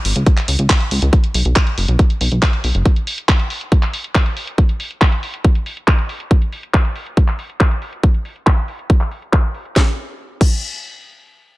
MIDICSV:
0, 0, Header, 1, 3, 480
1, 0, Start_track
1, 0, Tempo, 431655
1, 1254, Time_signature, 4, 2, 24, 8
1, 12873, End_track
2, 0, Start_track
2, 0, Title_t, "Analog synth bass"
2, 0, Program_c, 0, 38
2, 55, Note_on_c, 0, 32, 89
2, 148, Note_off_c, 0, 32, 0
2, 175, Note_on_c, 0, 37, 82
2, 268, Note_off_c, 0, 37, 0
2, 535, Note_on_c, 0, 37, 95
2, 628, Note_off_c, 0, 37, 0
2, 655, Note_on_c, 0, 37, 79
2, 748, Note_off_c, 0, 37, 0
2, 1015, Note_on_c, 0, 37, 90
2, 1108, Note_off_c, 0, 37, 0
2, 1135, Note_on_c, 0, 37, 78
2, 1228, Note_off_c, 0, 37, 0
2, 1496, Note_on_c, 0, 35, 93
2, 1588, Note_off_c, 0, 35, 0
2, 1616, Note_on_c, 0, 35, 79
2, 1708, Note_off_c, 0, 35, 0
2, 1976, Note_on_c, 0, 30, 90
2, 2068, Note_off_c, 0, 30, 0
2, 2095, Note_on_c, 0, 35, 84
2, 2188, Note_off_c, 0, 35, 0
2, 2455, Note_on_c, 0, 35, 93
2, 2548, Note_off_c, 0, 35, 0
2, 2575, Note_on_c, 0, 35, 81
2, 2668, Note_off_c, 0, 35, 0
2, 2935, Note_on_c, 0, 35, 88
2, 3028, Note_off_c, 0, 35, 0
2, 3055, Note_on_c, 0, 30, 79
2, 3148, Note_off_c, 0, 30, 0
2, 12873, End_track
3, 0, Start_track
3, 0, Title_t, "Drums"
3, 55, Note_on_c, 9, 46, 108
3, 167, Note_off_c, 9, 46, 0
3, 175, Note_on_c, 9, 42, 49
3, 286, Note_off_c, 9, 42, 0
3, 294, Note_on_c, 9, 36, 122
3, 295, Note_on_c, 9, 42, 74
3, 406, Note_off_c, 9, 36, 0
3, 406, Note_off_c, 9, 42, 0
3, 415, Note_on_c, 9, 39, 36
3, 415, Note_on_c, 9, 42, 49
3, 526, Note_off_c, 9, 39, 0
3, 526, Note_off_c, 9, 42, 0
3, 535, Note_on_c, 9, 46, 106
3, 646, Note_off_c, 9, 46, 0
3, 655, Note_on_c, 9, 42, 51
3, 766, Note_off_c, 9, 42, 0
3, 775, Note_on_c, 9, 36, 118
3, 775, Note_on_c, 9, 39, 120
3, 775, Note_on_c, 9, 42, 75
3, 886, Note_off_c, 9, 36, 0
3, 886, Note_off_c, 9, 39, 0
3, 886, Note_off_c, 9, 42, 0
3, 895, Note_on_c, 9, 42, 48
3, 1006, Note_off_c, 9, 42, 0
3, 1015, Note_on_c, 9, 46, 107
3, 1127, Note_off_c, 9, 46, 0
3, 1135, Note_on_c, 9, 42, 49
3, 1246, Note_off_c, 9, 42, 0
3, 1255, Note_on_c, 9, 36, 121
3, 1255, Note_on_c, 9, 42, 70
3, 1366, Note_off_c, 9, 36, 0
3, 1366, Note_off_c, 9, 42, 0
3, 1375, Note_on_c, 9, 42, 47
3, 1486, Note_off_c, 9, 42, 0
3, 1495, Note_on_c, 9, 46, 107
3, 1606, Note_off_c, 9, 46, 0
3, 1615, Note_on_c, 9, 42, 48
3, 1726, Note_off_c, 9, 42, 0
3, 1735, Note_on_c, 9, 36, 116
3, 1735, Note_on_c, 9, 39, 107
3, 1735, Note_on_c, 9, 42, 68
3, 1846, Note_off_c, 9, 36, 0
3, 1846, Note_off_c, 9, 39, 0
3, 1846, Note_off_c, 9, 42, 0
3, 1855, Note_on_c, 9, 42, 48
3, 1966, Note_off_c, 9, 42, 0
3, 1975, Note_on_c, 9, 46, 106
3, 2087, Note_off_c, 9, 46, 0
3, 2095, Note_on_c, 9, 42, 48
3, 2207, Note_off_c, 9, 42, 0
3, 2215, Note_on_c, 9, 36, 117
3, 2215, Note_on_c, 9, 42, 71
3, 2326, Note_off_c, 9, 36, 0
3, 2326, Note_off_c, 9, 42, 0
3, 2336, Note_on_c, 9, 42, 48
3, 2447, Note_off_c, 9, 42, 0
3, 2455, Note_on_c, 9, 46, 103
3, 2567, Note_off_c, 9, 46, 0
3, 2575, Note_on_c, 9, 42, 48
3, 2687, Note_off_c, 9, 42, 0
3, 2695, Note_on_c, 9, 36, 117
3, 2695, Note_on_c, 9, 39, 113
3, 2695, Note_on_c, 9, 42, 75
3, 2806, Note_off_c, 9, 36, 0
3, 2806, Note_off_c, 9, 39, 0
3, 2806, Note_off_c, 9, 42, 0
3, 2815, Note_on_c, 9, 42, 47
3, 2927, Note_off_c, 9, 42, 0
3, 2935, Note_on_c, 9, 46, 105
3, 3046, Note_off_c, 9, 46, 0
3, 3055, Note_on_c, 9, 42, 48
3, 3166, Note_off_c, 9, 42, 0
3, 3175, Note_on_c, 9, 36, 111
3, 3175, Note_on_c, 9, 42, 71
3, 3286, Note_off_c, 9, 36, 0
3, 3286, Note_off_c, 9, 42, 0
3, 3295, Note_on_c, 9, 42, 48
3, 3406, Note_off_c, 9, 42, 0
3, 3415, Note_on_c, 9, 46, 104
3, 3526, Note_off_c, 9, 46, 0
3, 3535, Note_on_c, 9, 42, 47
3, 3646, Note_off_c, 9, 42, 0
3, 3655, Note_on_c, 9, 36, 115
3, 3655, Note_on_c, 9, 39, 107
3, 3655, Note_on_c, 9, 42, 70
3, 3766, Note_off_c, 9, 36, 0
3, 3767, Note_off_c, 9, 39, 0
3, 3767, Note_off_c, 9, 42, 0
3, 3775, Note_on_c, 9, 42, 49
3, 3887, Note_off_c, 9, 42, 0
3, 3895, Note_on_c, 9, 46, 95
3, 4007, Note_off_c, 9, 46, 0
3, 4016, Note_on_c, 9, 42, 47
3, 4127, Note_off_c, 9, 42, 0
3, 4135, Note_on_c, 9, 36, 111
3, 4135, Note_on_c, 9, 42, 71
3, 4246, Note_off_c, 9, 36, 0
3, 4247, Note_off_c, 9, 42, 0
3, 4255, Note_on_c, 9, 39, 34
3, 4255, Note_on_c, 9, 42, 47
3, 4366, Note_off_c, 9, 39, 0
3, 4366, Note_off_c, 9, 42, 0
3, 4376, Note_on_c, 9, 46, 100
3, 4487, Note_off_c, 9, 46, 0
3, 4495, Note_on_c, 9, 42, 49
3, 4606, Note_off_c, 9, 42, 0
3, 4615, Note_on_c, 9, 36, 111
3, 4615, Note_on_c, 9, 39, 109
3, 4615, Note_on_c, 9, 42, 74
3, 4726, Note_off_c, 9, 36, 0
3, 4727, Note_off_c, 9, 39, 0
3, 4727, Note_off_c, 9, 42, 0
3, 4736, Note_on_c, 9, 42, 48
3, 4847, Note_off_c, 9, 42, 0
3, 4856, Note_on_c, 9, 46, 102
3, 4967, Note_off_c, 9, 46, 0
3, 4976, Note_on_c, 9, 42, 47
3, 5087, Note_off_c, 9, 42, 0
3, 5095, Note_on_c, 9, 36, 105
3, 5096, Note_on_c, 9, 42, 71
3, 5206, Note_off_c, 9, 36, 0
3, 5207, Note_off_c, 9, 42, 0
3, 5216, Note_on_c, 9, 42, 49
3, 5327, Note_off_c, 9, 42, 0
3, 5336, Note_on_c, 9, 46, 96
3, 5447, Note_off_c, 9, 46, 0
3, 5456, Note_on_c, 9, 42, 49
3, 5567, Note_off_c, 9, 42, 0
3, 5575, Note_on_c, 9, 36, 107
3, 5576, Note_on_c, 9, 39, 102
3, 5576, Note_on_c, 9, 42, 69
3, 5686, Note_off_c, 9, 36, 0
3, 5687, Note_off_c, 9, 39, 0
3, 5687, Note_off_c, 9, 42, 0
3, 5696, Note_on_c, 9, 42, 50
3, 5807, Note_off_c, 9, 42, 0
3, 5815, Note_on_c, 9, 46, 97
3, 5927, Note_off_c, 9, 46, 0
3, 5936, Note_on_c, 9, 42, 48
3, 6047, Note_off_c, 9, 42, 0
3, 6055, Note_on_c, 9, 36, 108
3, 6055, Note_on_c, 9, 42, 71
3, 6166, Note_off_c, 9, 36, 0
3, 6166, Note_off_c, 9, 42, 0
3, 6175, Note_on_c, 9, 42, 49
3, 6286, Note_off_c, 9, 42, 0
3, 6295, Note_on_c, 9, 46, 95
3, 6406, Note_off_c, 9, 46, 0
3, 6415, Note_on_c, 9, 42, 50
3, 6527, Note_off_c, 9, 42, 0
3, 6535, Note_on_c, 9, 36, 105
3, 6535, Note_on_c, 9, 39, 109
3, 6535, Note_on_c, 9, 42, 76
3, 6646, Note_off_c, 9, 36, 0
3, 6647, Note_off_c, 9, 39, 0
3, 6647, Note_off_c, 9, 42, 0
3, 6655, Note_on_c, 9, 42, 49
3, 6767, Note_off_c, 9, 42, 0
3, 6775, Note_on_c, 9, 46, 96
3, 6886, Note_off_c, 9, 46, 0
3, 6896, Note_on_c, 9, 42, 47
3, 7007, Note_off_c, 9, 42, 0
3, 7015, Note_on_c, 9, 36, 104
3, 7015, Note_on_c, 9, 42, 76
3, 7126, Note_off_c, 9, 36, 0
3, 7127, Note_off_c, 9, 42, 0
3, 7136, Note_on_c, 9, 42, 50
3, 7247, Note_off_c, 9, 42, 0
3, 7255, Note_on_c, 9, 46, 93
3, 7367, Note_off_c, 9, 46, 0
3, 7375, Note_on_c, 9, 42, 50
3, 7487, Note_off_c, 9, 42, 0
3, 7495, Note_on_c, 9, 36, 106
3, 7495, Note_on_c, 9, 39, 108
3, 7495, Note_on_c, 9, 42, 75
3, 7606, Note_off_c, 9, 36, 0
3, 7606, Note_off_c, 9, 39, 0
3, 7606, Note_off_c, 9, 42, 0
3, 7615, Note_on_c, 9, 42, 52
3, 7727, Note_off_c, 9, 42, 0
3, 7735, Note_on_c, 9, 46, 92
3, 7846, Note_off_c, 9, 46, 0
3, 7855, Note_on_c, 9, 42, 51
3, 7966, Note_off_c, 9, 42, 0
3, 7975, Note_on_c, 9, 36, 104
3, 7975, Note_on_c, 9, 42, 76
3, 8086, Note_off_c, 9, 36, 0
3, 8086, Note_off_c, 9, 42, 0
3, 8096, Note_on_c, 9, 39, 33
3, 8096, Note_on_c, 9, 42, 51
3, 8207, Note_off_c, 9, 39, 0
3, 8207, Note_off_c, 9, 42, 0
3, 8216, Note_on_c, 9, 46, 92
3, 8327, Note_off_c, 9, 46, 0
3, 8336, Note_on_c, 9, 42, 51
3, 8447, Note_off_c, 9, 42, 0
3, 8455, Note_on_c, 9, 36, 103
3, 8455, Note_on_c, 9, 39, 111
3, 8455, Note_on_c, 9, 42, 76
3, 8566, Note_off_c, 9, 36, 0
3, 8567, Note_off_c, 9, 39, 0
3, 8567, Note_off_c, 9, 42, 0
3, 8575, Note_on_c, 9, 42, 50
3, 8686, Note_off_c, 9, 42, 0
3, 8695, Note_on_c, 9, 46, 93
3, 8806, Note_off_c, 9, 46, 0
3, 8815, Note_on_c, 9, 42, 50
3, 8926, Note_off_c, 9, 42, 0
3, 8935, Note_on_c, 9, 36, 107
3, 8935, Note_on_c, 9, 42, 75
3, 9046, Note_off_c, 9, 36, 0
3, 9046, Note_off_c, 9, 42, 0
3, 9055, Note_on_c, 9, 42, 51
3, 9166, Note_off_c, 9, 42, 0
3, 9175, Note_on_c, 9, 46, 99
3, 9286, Note_off_c, 9, 46, 0
3, 9294, Note_on_c, 9, 42, 50
3, 9406, Note_off_c, 9, 42, 0
3, 9415, Note_on_c, 9, 36, 106
3, 9415, Note_on_c, 9, 39, 109
3, 9526, Note_off_c, 9, 36, 0
3, 9526, Note_off_c, 9, 39, 0
3, 9535, Note_on_c, 9, 42, 51
3, 9646, Note_off_c, 9, 42, 0
3, 9655, Note_on_c, 9, 46, 94
3, 9766, Note_off_c, 9, 46, 0
3, 9775, Note_on_c, 9, 42, 51
3, 9886, Note_off_c, 9, 42, 0
3, 9895, Note_on_c, 9, 36, 105
3, 9895, Note_on_c, 9, 42, 74
3, 10006, Note_off_c, 9, 36, 0
3, 10006, Note_off_c, 9, 42, 0
3, 10015, Note_on_c, 9, 39, 35
3, 10015, Note_on_c, 9, 42, 51
3, 10127, Note_off_c, 9, 39, 0
3, 10127, Note_off_c, 9, 42, 0
3, 10135, Note_on_c, 9, 46, 92
3, 10246, Note_off_c, 9, 46, 0
3, 10255, Note_on_c, 9, 42, 52
3, 10366, Note_off_c, 9, 42, 0
3, 10375, Note_on_c, 9, 36, 102
3, 10375, Note_on_c, 9, 39, 113
3, 10486, Note_off_c, 9, 36, 0
3, 10486, Note_off_c, 9, 39, 0
3, 10495, Note_on_c, 9, 42, 50
3, 10606, Note_off_c, 9, 42, 0
3, 10615, Note_on_c, 9, 46, 95
3, 10726, Note_off_c, 9, 46, 0
3, 10735, Note_on_c, 9, 42, 50
3, 10846, Note_off_c, 9, 42, 0
3, 10855, Note_on_c, 9, 36, 105
3, 10855, Note_on_c, 9, 38, 78
3, 10966, Note_off_c, 9, 36, 0
3, 10966, Note_off_c, 9, 38, 0
3, 11575, Note_on_c, 9, 36, 108
3, 11575, Note_on_c, 9, 49, 76
3, 11686, Note_off_c, 9, 36, 0
3, 11686, Note_off_c, 9, 49, 0
3, 12873, End_track
0, 0, End_of_file